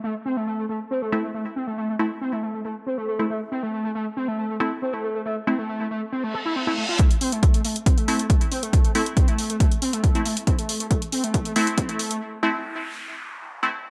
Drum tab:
HH |----------------|----------------|----------------|----------------|
BD |----------------|----------------|----------------|----------------|

HH |xxoxxxoxxxoxxxox|xxoxxxoxxxoxxxox|xxoxxxoxxxoxxxox|----------------|
BD |o---o---o---o---|o---o---o---o---|o---o---o---o---|----------------|